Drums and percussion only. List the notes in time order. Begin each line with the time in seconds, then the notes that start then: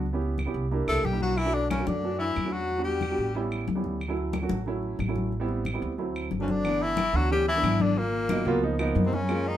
0.06 high conga
0.22 high conga
0.38 high conga, claves
0.54 high conga
0.72 high conga
0.88 high conga, claves
1.05 high conga
1.21 high conga
1.38 high conga, claves
1.55 high conga
1.71 high conga, claves
1.87 high conga
2.03 high conga
2.19 high conga
2.36 high conga, claves
2.69 high conga
2.85 high conga
3.01 high conga, claves
3.18 high conga
3.35 high conga
3.51 high conga, claves
3.68 high conga
3.84 high conga
4.01 high conga, claves
4.17 high conga
4.33 high conga, claves
4.49 high conga
4.66 high conga
4.83 high conga
4.99 high conga, claves
5.16 high conga
5.32 high conga
5.48 high conga
5.65 high conga, claves
5.83 high conga
5.98 high conga
6.15 high conga, claves
6.31 high conga
6.48 high conga
6.64 high conga, claves
6.80 high conga
6.97 high conga, claves
7.14 high conga
7.31 high conga
7.47 high conga
7.63 high conga, claves
7.80 high conga
7.96 high conga
8.13 high conga
8.29 high conga, claves
8.47 high conga
8.63 high conga
8.79 high conga, claves
8.96 high conga
9.13 high conga
9.29 high conga, claves
9.46 high conga